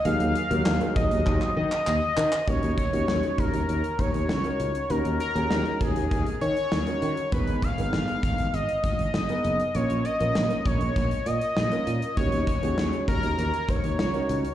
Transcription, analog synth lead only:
\new Staff \with { instrumentName = "Analog synth lead" } { \time 4/4 \key ees \minor \tempo 4 = 99 f''4. ees''4 ees''4. | des''8 des''4 bes'4 des''4. | bes'8 bes'4 aes'4 des''4. | ces''8 f''4. ees''8 ees''4. |
des''8 ees''4 des''4 ees''4. | des''8 des''4 bes'4 des''4. | }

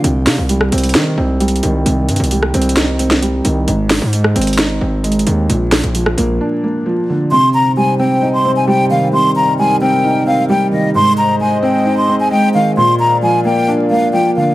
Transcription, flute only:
\new Staff \with { instrumentName = "Flute" } { \time 4/4 \key c \minor \tempo 4 = 132 r1 | r1 | r1 | r1 |
c'''8 bes''8 aes''8 g''8. c'''8 aes''16 g''8 f''8 | c'''8 bes''8 aes''8 g''4 f''8 g''8 ees''8 | c'''8 bes''8 aes''8 g''8. c'''8 aes''16 g''8 f''8 | c'''8 bes''8 aes''8 g''4 f''8 g''8 f''8 | }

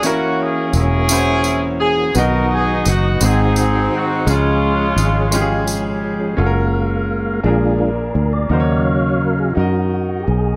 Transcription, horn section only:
\new Staff \with { instrumentName = "Horn section" } { \time 6/8 \key fis \major \tempo 4. = 57 << { fis'8 gis'8 gis'4. gis'8 | ais'8 gis'8 fis'8 gis'8 gis'8 fis'8 | eis'2 r4 | r2. |
r2. | } \\ { <ais cis'>4 <cis' e'>4. r8 | <dis' fis'>4. <bis dis'>4. | <gis cis'>2 r4 | r2. |
r2. | } >> }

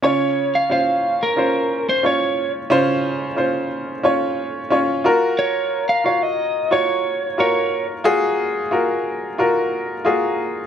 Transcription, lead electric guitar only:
\new Staff \with { instrumentName = "Lead electric guitar" } { \time 4/4 \key des \major \tempo 4 = 90 des''8. f''16 f''8. bes'4 c''16 des''8. r16 | r1 | des''8. f''16 f''16 ees''8. des''4 des''8. r16 | r1 | }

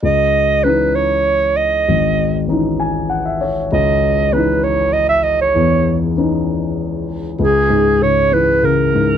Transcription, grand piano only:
<<
  \new Staff \with { instrumentName = "Grand piano" } { \time 3/4 \key cis \minor \tempo 4 = 98 r2. | r4. gis''8 fis''16 e''16 cis''8 | r2. | r2. |
r2. | }
  \new Staff \with { instrumentName = "Grand piano" } { \clef bass \time 3/4 \key cis \minor cis,4 <e cis' dis'>2 | gis,,4 <e cis' dis'>2 | cis,4 <e cis' dis'>2 | e,4 <e cis' dis'>2 |
cis,8 gis,8 cis8 e8 cis8 gis,8 | }
>>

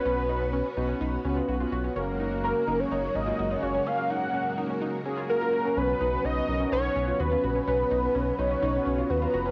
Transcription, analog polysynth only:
\new Staff \with { instrumentName = "Analog polysynth" } { \time 4/4 \key b \lydian \tempo 4 = 126 <b cis' fis' b'>8 <b cis' fis' b'>4 <b cis' fis' b'>4 <b cis' fis' b'>8. <b cis' fis' b'>8. | <ais cis' fis' ais'>8 <ais cis' fis' ais'>4 <ais cis' fis' ais'>4 <ais cis' fis' ais'>8. <ais cis' fis' cis''>8. | <ais cis' fis' ais'>8 <ais cis' fis' ais'>4 <ais cis' fis' ais'>4 <ais cis' fis' gis'>8. <ais cis' fis' ais'>8. | <b cis' fis' b'>8. <b cis' fis' b'>8. <b cis' fis' ais'>8. <b cis' fis' b'>4 <b cis' fis' b'>8. |
<b cis' fis' b'>8. <b cis' fis' b'>8. <b cis' fis' b'>8. <b cis' fis' b'>4 <b cis' fis' ais''>8. | }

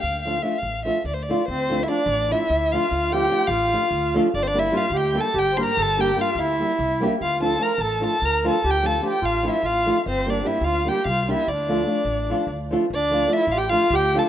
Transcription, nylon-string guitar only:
\new Staff \with { instrumentName = "Nylon-string guitar" } { \time 7/8 \key d \minor \tempo 4 = 147 r8 <f a d' f'>8 <f a d' f'>8 r8 <f a d' f'>8 r8 <f a d' f'>8 | r8 <f a d' f'>8 <f a d' f'>8 r8 <f a d' f'>8 r8 <f a d' f'>8 | r8 <f a d' f'>8 <f a d' f'>8 r8 <f a d' f'>8 r8 <f a d' f'>8 | r8 <g bes d' g'>8 <g bes d' g'>8 r8 <g bes d' g'>8 r8 <g bes d' g'>8 |
r8 <g bes d' g'>8 <g bes d' g'>8 r8 <g bes d' g'>8 r8 <g bes d' g'>8 | r8 <f a d' f'>8 <f a d' f'>8 r8 <f a d' f'>8 r8 <f a d' f'>8 | r8 <f a d' f'>8 <f a d' f'>8 r8 <f a d' f'>8 r8 <f a d' f'>8 | r8 <g bes d' g'>8 <g bes d' g'>8 r8 <g bes d' g'>8 r8 <g bes d' g'>8 |
r8 <f a d' f'>8 <f a d' f'>8 r8 <f a d' f'>8 r8 <f a d' f'>8 | r8 <f a d' f'>8 <f a d' f'>8 r8 <f a d' f'>8 r8 <f a d' f'>8 | }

